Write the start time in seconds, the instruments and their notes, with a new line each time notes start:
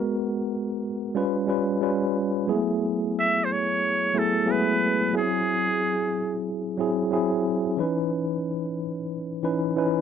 Already playing: tine electric piano G#3 B3 F#4 A#4
1.15 tine electric piano G3 C#4 F4 B4
1.47 tine electric piano G3 C#4 F4 B4
1.81 tine electric piano G3 C#4 F4 B4
2.47 tine electric piano F#3 G#3 B3 E4 G#4
2.54 tine electric piano A3
3.19 muted trumpet E5
3.44 muted trumpet C5
3.52 muted trumpet C#5
4.13 tine electric piano F#3 A3 B3 E4 G#4
4.18 muted trumpet A4
4.45 tine electric piano F#3 G#3 B3 E4 G#4
4.51 tine electric piano A3, muted trumpet B4
5.12 tine electric piano F#3 B3 E4 G#4
5.17 tine electric piano C4, muted trumpet G#4
6.78 tine electric piano F#3 C4 E4 G#4
7.11 tine electric piano F#3 C4 E4 G#4
7.77 tine electric piano E3 C#4 D#4 B4
9.43 tine electric piano E3 C#4 D#4 B4
9.76 tine electric piano E3 C#4 D#4 B4